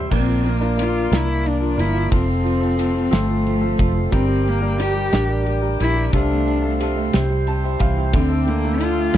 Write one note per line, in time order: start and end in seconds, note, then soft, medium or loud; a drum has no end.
0.00 0.13 C3 medium
0.00 0.11 G3 soft
0.00 0.14 G3 medium
0.00 0.12 C4 medium
0.00 0.11 E4 medium
0.00 0.10 G4 medium
0.00 0.11 C5 medium
0.00 0.10 E5 medium
0.00 0.13 E5 medium
0.00 0.13 G5 medium
0.00 0.10 C6 medium
0.10 1.08 A#1 loud
0.10 0.28 A#2 medium
0.10 0.28 F3 medium
0.10 0.43 A#3 medium
0.10 0.28 A#3 medium
0.10 0.29 D4 medium
0.10 0.28 F4 medium
0.10 2.10 A#4 medium
0.10 0.27 A#4 medium
0.10 2.10 D5 medium
0.10 2.10 D6 medium
0.10 kick medium
0.10 crash medium
0.16 0.50 C4 medium
0.26 1.57 F3 soft
0.26 0.61 D4 soft
0.26 0.61 F4 soft
0.26 0.60 A#4 medium
0.31 0.62 A#3 soft
0.44 0.76 A#3 medium
0.44 ride soft
0.49 0.84 A#3 medium
0.61 0.77 A#3 soft
0.61 1.91 D4 medium
0.61 0.78 D4 soft
0.61 0.79 F4 medium
0.61 0.78 A#4 medium
0.77 1.09 A#3 medium
0.77 1.11 A#3 medium
0.77 1.11 D4 medium
0.77 1.11 F4 medium
0.77 1.11 A#4 medium
0.77 ride medium
0.82 1.18 F4 medium
1.10 1.80 C2 medium
1.10 1.28 A#2 medium
1.10 1.28 F3 medium
1.10 1.43 A#3 medium
1.10 1.29 A#3 medium
1.10 1.28 D4 medium
1.10 1.27 F4 medium
1.10 1.26 A#4 medium
1.10 snare loud
1.10 ride medium
1.16 1.50 E4 loud
1.28 1.62 A#3 soft
1.28 1.61 D4 soft
1.28 1.60 F4 soft
1.28 1.59 A#4 medium
1.44 1.76 A#3 soft
1.44 1.81 D4 medium
1.44 ride soft
1.61 2.09 F3 medium
1.61 1.76 A#3 soft
1.61 1.77 D4 soft
1.61 1.78 F4 soft
1.61 1.78 A#4 medium
1.77 2.10 G1 medium
1.77 2.10 A#3 medium
1.77 2.11 A#3 medium
1.77 2.12 D4 medium
1.77 2.13 E4 medium
1.77 2.12 A#4 medium
1.77 ride medium
1.93 2.11 F4 medium
2.10 3.08 F1 loud
2.10 2.25 F3 medium
2.10 2.28 F3 medium
2.10 2.28 A3 medium
2.10 2.29 C4 medium
2.10 2.27 F4 medium
2.10 2.26 A4 medium
2.10 4.11 A4 medium
2.10 4.12 C5 medium
2.10 4.11 C6 medium
2.10 kick medium
2.10 ride medium
2.15 3.16 C4 medium
2.26 2.42 F3 soft
2.26 2.62 C4 soft
2.26 2.61 F4 medium
2.26 2.60 A4 soft
2.43 2.59 F3 medium
2.43 ride soft
2.60 2.75 F3 medium
2.60 2.78 C4 soft
2.60 2.78 F4 soft
2.60 2.78 A4 medium
2.77 2.93 F3 medium
2.77 3.10 A3 medium
2.77 3.10 C4 medium
2.77 3.11 F4 medium
2.77 3.11 A4 medium
2.77 ride medium
2.95 3.27 F3 medium
3.11 3.75 G1 medium
3.11 3.28 F3 medium
3.11 3.29 A3 medium
3.11 4.09 C4 medium
3.11 3.29 C4 medium
3.11 3.28 F4 medium
3.11 3.26 A4 medium
3.11 snare loud
3.11 ride medium
3.15 3.89 A3 loud
3.28 3.44 F3 medium
3.28 3.63 C4 soft
3.28 3.61 F4 soft
3.28 3.60 A4 medium
3.45 3.60 F3 medium
3.45 ride soft
3.61 3.77 F3 medium
3.61 3.77 C4 soft
3.61 3.78 F4 soft
3.61 3.79 A4 medium
3.78 4.11 F1 medium
3.78 3.93 F3 medium
3.78 4.11 A3 medium
3.78 4.11 C4 medium
3.78 4.12 F4 medium
3.78 4.12 A4 medium
3.78 kick medium
3.78 ride medium
3.95 4.12 F3 medium
4.11 5.09 G1 loud
4.11 4.26 G3 medium
4.11 4.29 G3 medium
4.11 4.50 C4 loud
4.11 4.29 D4 medium
4.11 4.28 G4 medium
4.11 4.26 A#4 medium
4.11 6.12 A#4 medium
4.11 6.12 D5 medium
4.11 6.12 G5 medium
4.11 6.12 D6 medium
4.11 kick medium
4.11 ride medium
4.27 4.43 G3 medium
4.27 4.62 D4 soft
4.27 4.61 G4 soft
4.27 4.59 A#4 medium
4.44 4.60 G3 medium
4.44 ride soft
4.49 4.83 A#3 loud
4.61 4.76 G3 medium
4.61 4.78 D4 soft
4.61 4.79 G4 medium
4.61 4.78 A#4 medium
4.78 4.93 G3 medium
4.78 5.11 G3 medium
4.78 5.11 D4 medium
4.78 5.12 G4 medium
4.78 5.47 G4 loud
4.78 5.12 A#4 medium
4.78 ride medium
4.95 5.27 G3 medium
5.12 5.76 A1 medium
5.12 5.29 G3 medium
5.12 5.30 D4 medium
5.12 6.10 D4 medium
5.12 5.29 G4 medium
5.12 5.27 A#4 medium
5.12 snare loud
5.12 ride medium
5.29 5.44 G3 medium
5.29 5.64 D4 soft
5.29 5.62 G4 medium
5.29 5.61 A#4 medium
5.46 5.60 G3 medium
5.46 ride soft
5.62 5.77 G3 medium
5.62 5.79 D4 soft
5.62 5.80 G4 soft
5.62 5.79 A#4 medium
5.79 6.12 A#1 medium
5.79 5.95 G3 medium
5.79 6.13 G3 medium
5.79 6.13 D4 medium
5.79 6.11 E4 loud
5.79 6.13 G4 medium
5.79 6.14 A#4 medium
5.79 ride medium
5.96 6.13 G3 soft
6.12 7.09 C2 medium
6.12 6.29 C3 medium
6.12 6.45 C3 medium
6.12 6.30 F3 medium
6.12 6.30 A3 medium
6.12 6.30 C4 medium
6.12 6.85 D4 loud
6.12 6.29 F4 medium
6.12 6.28 A4 medium
6.12 7.14 A4 medium
6.12 8.13 C5 medium
6.12 7.14 F5 medium
6.12 8.13 C6 medium
6.12 kick medium
6.12 ride medium
6.29 6.63 A3 soft
6.29 6.64 A3 soft
6.29 6.64 C4 medium
6.29 6.63 F4 soft
6.29 6.62 A4 medium
6.47 6.79 C3 medium
6.47 ride soft
6.63 6.95 A3 medium
6.63 6.79 A3 soft
6.63 6.80 C4 soft
6.63 6.80 F4 soft
6.63 6.80 A4 medium
6.80 7.12 C3 medium
6.80 7.14 A3 medium
6.80 7.14 C4 medium
6.80 7.15 F4 medium
6.80 7.15 A4 medium
6.80 ride medium
6.96 7.13 A3 medium
7.13 7.77 C2 medium
7.13 8.11 C3 medium
7.13 7.30 C3 medium
7.13 7.31 E3 medium
7.13 7.31 G3 medium
7.13 7.31 C4 medium
7.13 7.30 E4 medium
7.13 8.13 G4 medium
7.13 7.29 C5 medium
7.13 9.18 G5 medium
7.13 snare loud
7.13 ride medium
7.30 8.11 G3 medium
7.30 7.65 G3 soft
7.30 7.65 C4 soft
7.30 7.64 E4 medium
7.30 7.63 C5 medium
7.47 7.96 C4 medium
7.47 7.78 A5 medium
7.47 ride soft
7.64 7.79 G3 soft
7.64 7.80 C4 medium
7.64 7.81 E4 medium
7.64 8.12 G4 medium
7.64 7.81 C5 medium
7.79 8.12 C2 medium
7.79 8.13 E3 medium
7.79 8.14 G3 medium
7.79 8.14 C4 medium
7.79 8.14 E4 medium
7.79 8.15 C5 medium
7.79 8.11 F5 medium
7.79 kick medium
7.79 ride medium
7.97 8.13 C4 medium
8.13 9.10 D2 loud
8.13 8.30 D3 medium
8.13 8.45 D3 medium
8.13 8.31 F3 medium
8.13 8.31 A3 medium
8.13 8.50 C4 medium
8.13 8.30 D4 medium
8.13 8.30 E4 medium
8.13 9.18 A4 medium
8.13 8.28 A4 medium
8.13 9.18 E5 medium
8.13 9.18 D6 medium
8.13 kick medium
8.13 ride medium
8.29 8.65 A3 soft
8.29 8.64 D4 soft
8.29 8.63 E4 soft
8.29 8.62 A4 soft
8.29 9.18 A4 soft
8.47 8.80 D3 medium
8.47 8.83 A#3 loud
8.47 ride soft
8.63 8.97 A3 medium
8.63 8.79 A3 soft
8.63 8.80 D4 soft
8.63 8.81 E4 soft
8.63 8.80 A4 medium
8.80 9.14 D3 medium
8.80 9.13 A3 medium
8.80 9.14 D4 medium
8.80 9.17 F4 loud
8.80 9.15 A4 medium
8.80 ride medium
8.98 9.18 A3 medium
9.14 9.18 E2 medium
9.14 9.18 D3 medium
9.14 9.18 F3 medium
9.14 9.18 A3 medium
9.14 ride medium